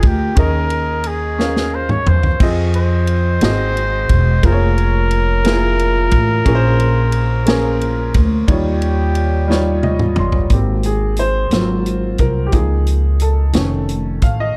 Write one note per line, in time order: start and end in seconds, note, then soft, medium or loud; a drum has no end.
0.00 0.35 D2 medium
0.00 0.40 G#3 medium
0.00 0.40 F4 medium
0.00 0.39 G4 medium
0.00 0.38 A#4 medium
0.00 0.39 D#5 medium
0.00 kick medium
0.00 ride bell medium
0.07 0.40 G4 medium
0.36 2.02 D#2 medium
0.36 1.35 D#3 medium
0.36 1.08 C#4 medium
0.36 1.09 G#4 medium
0.36 1.10 A#4 medium
0.36 1.09 A#4 loud
0.36 1.10 D#5 medium
0.36 kick loud
0.36 ride bell medium
0.70 ride bell soft
1.04 1.76 G#4 medium
1.04 ride bell soft
1.38 2.10 C#4 medium
1.38 2.11 G#4 medium
1.38 2.11 A#4 medium
1.38 2.12 F5 medium
1.38 snare medium
1.56 snare medium
1.75 1.93 C5 medium
1.89 2.09 C#5 medium
1.89 mid tom medium
2.07 2.38 E2 medium
2.07 2.48 C5 medium
2.07 mid tom medium
2.23 floor tom medium
2.40 3.38 F2 loud
2.40 3.12 C4 medium
2.40 3.13 F4 medium
2.40 3.13 G#4 medium
2.40 3.13 D#5 medium
2.40 kick loud
2.40 crash medium
2.74 4.47 C5 loud
2.74 ride bell soft
3.07 ride bell soft
3.41 4.05 G#1 loud
3.41 4.40 G#2 medium
3.41 3.48 A#3 medium
3.41 4.14 F#4 medium
3.41 4.14 G#4 medium
3.41 4.15 D#5 medium
3.41 snare medium
3.41 ride bell medium
3.48 4.17 C4 medium
3.77 ride bell soft
4.09 4.41 E1 loud
4.09 kick medium
4.09 ride bell medium
4.43 6.08 F1 loud
4.43 5.14 A#3 medium
4.43 5.15 F4 medium
4.43 5.15 G#4 medium
4.43 8.22 A#4 loud
4.43 4.51 C5 medium
4.43 kick loud
4.43 ride bell medium
4.52 5.19 C#5 medium
4.78 ride bell soft
5.11 ride bell soft
5.44 6.16 A#3 medium
5.44 5.51 E4 medium
5.44 6.17 G#4 medium
5.44 6.17 A#4 medium
5.44 snare medium
5.44 ride bell medium
5.52 6.20 F4 medium
5.79 ride bell soft
6.11 6.43 A1 loud
6.11 kick medium
6.11 ride bell medium
6.45 8.11 A#1 loud
6.45 7.43 A#2 medium
6.45 7.17 A#3 medium
6.45 7.18 C#4 medium
6.45 7.18 G#4 medium
6.45 6.53 A#4 medium
6.45 kick loud
6.45 ride bell medium
6.55 7.22 C5 loud
6.80 ride bell soft
7.12 ride bell medium
7.46 8.18 A#3 medium
7.46 8.19 C#4 medium
7.46 8.19 G#4 medium
7.46 8.19 A#4 medium
7.46 snare medium
7.46 ride bell medium
7.81 ride bell soft
8.14 8.46 D2 medium
8.14 kick medium
8.14 ride bell medium
8.48 10.13 D#2 loud
8.48 9.46 D#3 medium
8.48 9.20 G3 medium
8.48 9.20 D#4 medium
8.48 9.20 F4 medium
8.48 10.14 G4 medium
8.48 9.21 C#5 medium
8.48 kick loud
8.48 ride bell medium
8.82 ride bell soft
9.15 ride bell soft
9.48 10.20 G3 medium
9.48 10.21 D#4 medium
9.48 10.22 F4 medium
9.48 10.22 C#5 medium
9.48 snare medium
9.83 10.15 D#5 medium
9.83 high tom medium
9.99 mid tom medium
10.16 10.48 G1 medium
10.16 10.50 C6 medium
10.16 mid tom medium
10.32 floor tom medium
10.50 11.48 G#1 medium
10.50 11.49 A#3 soft
10.50 11.50 C4 medium
10.50 11.49 G4 soft
10.50 kick medium
10.50 closed hi-hat medium
10.83 11.20 G#4 medium
10.83 closed hi-hat soft
11.16 12.16 C5 medium
11.16 closed hi-hat medium
11.51 12.15 G#1 medium
11.51 11.97 F#3 soft
11.51 11.97 A#3 soft
11.51 11.98 C4 soft
11.51 11.98 F4 medium
11.51 snare medium
11.51 closed hi-hat medium
11.86 closed hi-hat soft
12.18 12.51 C2 medium
12.18 12.48 A#4 medium
12.18 kick medium
12.18 closed hi-hat medium
12.47 12.54 G4 medium
12.51 13.51 C#2 loud
12.51 12.97 F3 soft
12.51 12.98 A#3 soft
12.51 12.98 D#4 medium
12.51 13.23 G#4 medium
12.51 kick medium
12.51 closed hi-hat medium
12.87 closed hi-hat soft
13.20 13.85 A4 medium
13.20 closed hi-hat medium
13.53 14.18 F1 medium
13.53 13.99 D#3 medium
13.53 13.99 A3 soft
13.53 14.00 C#4 medium
13.53 snare medium
13.53 closed hi-hat medium
13.89 closed hi-hat soft
14.22 14.54 A1 medium
14.22 14.41 F5 medium
14.22 kick medium
14.22 closed hi-hat medium
14.40 14.57 D#5 medium